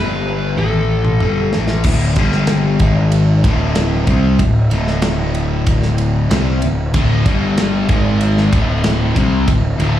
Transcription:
Already playing: G1 G2 D3 G3 B4
0.57 A1 A2 E3 A3 A4, high tom
0.73 high tom
1.05 mid tom
1.20 G1 G2 D3 G3, mid tom
1.53 A1 A2 E3 A3, snare
1.68 snare
1.84 D1 D2 A2 D3, kick, crash
2.16 G1 G2 D3 G3, kick, ride
2.32 snare
2.47 snare, ride
2.79 G#1 G#2 D#3, kick, ride
2.84 G#3
3.12 ride
3.44 D1 D2 A2 D3, kick, ride
3.75 snare, ride
4.07 C2 C3 G3 C4, kick, ride
4.39 D1 D2 A2, kick, ride
4.71 D1 D2 A2 D3, ride
4.87 snare
5.02 snare, ride
5.35 ride
5.67 kick, ride
5.83 snare
5.98 ride
6.31 C2 C3 G3 C4, snare, ride
6.62 D1 D2 A2, ride
6.94 D1 D2 A2 D3, kick, ride
7.25 G1 G2 D3 G3, kick, ride
7.58 snare, ride
7.89 G#1 G#2 D#3 G#3, kick, ride
8.21 ride
8.38 snare
8.52 D1 D2 A2 D3, kick, ride
8.84 snare, ride
9.15 C2 C3 G3 C4, kick, ride
9.47 D1 D2 A2, kick, ride
9.78 D1 D2 A2 D3, ride

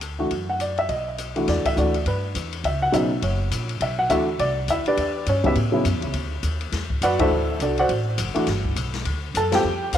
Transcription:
Already playing: D2
0.01 hi-hat pedal, ride
0.19 E3 A3 D4 F#4
0.30 F#2, kick, ride
0.50 F#5
0.60 D5, hi-hat pedal, ride
0.78 E5, ride
0.89 B1 D#5, kick, ride
1.18 hi-hat pedal, ride
1.36 E3 A3 D4 F#4, ride
1.48 E2 D5, kick, snare, ride
1.65 E5, muted upright bass stroke, kick, ride
1.76 D2 E3 A3 D4 F#4 D5, hi-hat pedal
1.94 ride
2.06 G2 B4, kick, ride
2.35 E2, kick, hi-hat pedal, ride
2.53 ride
2.64 C#2 E5, kick, ride
2.82 F#5
2.92 B1 C#3 F#3 B3 D#4 E5, kick, hi-hat pedal, ride
3.22 F#1 C#5, kick, ride
3.51 A#1, kick, hi-hat pedal, ride
3.69 ride
3.80 B1 E5, kick, ride
3.99 F#5
4.09 D2 E3 A3 D4 F#4 E5, kick, hi-hat pedal, ride
4.39 C2 D5, kick, ride
4.68 D2 E4 E5, kick, hi-hat pedal, ride
4.85 D4 G4 B4 D5, muted upright bass stroke, ride
4.97 E2, kick, ride
5.26 G2 C#4 C#5, kick, hi-hat pedal, ride
5.44 C#3 F#3 B3 E4 G4 B4 E5, kick, ride
5.55 A2, ride
5.72 C#3 F#3 B3 E4
5.85 F#2, kick, hi-hat pedal, ride
5.94 E2
6.02 C#2, ride
6.14 D2, kick, ride
6.43 D#2, kick, hi-hat pedal, ride
6.61 ride
6.72 E2, kick, snare, ride
6.90 kick
7.01 F#2 F#4 B4 D5 F#5, kick, hi-hat pedal, ride
7.19 E3 A3 D4 E4 F#4 A4 C5 E5, kick, ride
7.30 D2
7.59 C2 D4 F#4 A4 D5, kick, hi-hat pedal, ride
7.78 F#4 C5 D5 F#5, ride
7.89 A1, kick, ride
8.18 F#1, kick, hi-hat pedal, ride
8.34 E3 A3 D4 F#4, muted upright bass stroke, ride
8.47 G1, kick, snare, ride
8.65 kick
8.76 B1, kick, hi-hat pedal, ride
8.94 snare, ride
9.05 D2, kick, ride
9.34 F#2 A4 A5, kick, hi-hat pedal, ride
9.51 G3 C4 F4 G4 A4 G5, snare, ride
9.64 F2
9.93 D#2 F5, kick, hi-hat pedal, ride

